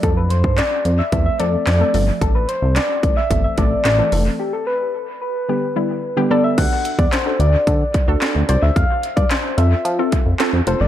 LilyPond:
<<
  \new Staff \with { instrumentName = "Soft synth lead" } { \time 4/4 \key d \dorian \tempo 4 = 110 a'16 b'16 c''8 d''8. e''8 e''16 d''8 d''8. r16 | a'16 b'16 c''8 d''8. e''8 e''16 d''8 d''8. r16 | g'16 a'16 b'4 b'2 d''16 e''16 | fis''8. d''16 c''8 d''4 r4 d''16 e''16 |
f''8. d''16 c''8 e''4 r4 c''16 d''16 | }
  \new Staff \with { instrumentName = "Synth pluck" } { \time 4/4 \key d \dorian r2 <f a c' a'>16 r16 <f a c' a'>8 r16 <f a c' a'>16 <f a c' a'>8 | r2 <e a c' a'>16 r16 <e a c' a'>8 r16 <e a c' a'>16 <e a c' a'>8 | r2 <d g b g'>16 r16 <d g b e'>8 r16 <d g b g'>16 <d g b a'>8 | <d' fis' a'>8. r8 <d' fis' a'>4 r8 <d' fis' a'>8 r16 <d' fis' c''>8 |
r4. <c' f' a'>8 r16 <c' f' a'>8 r16 <c' f' a'>16 r16 <c' f' a'>16 r16 | }
  \new Staff \with { instrumentName = "Analog synth bass" } { \clef bass \time 4/4 \key d \dorian f,8. g,8 r16 f,8 e,8 f,8 f,8 g,,8 | a,,8. c,8 r16 a,,8 g,,8 a,,8 a,,8 f,,8 | r1 | d,16 r8 e,16 r8 d,8 d8 r16 d,16 r16 d,16 c,16 d,16 |
f,16 r8 g,16 r8 f,8 f8 r16 f,16 r16 f,16 f,,16 g,,16 | }
  \new DrumStaff \with { instrumentName = "Drums" } \drummode { \time 4/4 <hh bd>8 hh16 bd16 <hc hh sn>8 hh8 <hh bd>8 hh8 <hc hh sn>8 hho8 | <hh bd>8 hh8 <hc hh sn>8 <hh bd>8 <hh bd>8 <hh bd>8 <hc hh sn>8 hho8 | r4 r4 r4 r4 | <cymc hh bd>8 hh16 <hh bd>16 <hc hh sn>8 hh8 <hh bd>8 <hh bd>8 <hc hh sn>8 hh8 |
<hh bd>8 hh16 <hh bd>16 <hc hh sn>8 hh8 hh8 <hh bd>8 <hc hh sn>8 hh8 | }
>>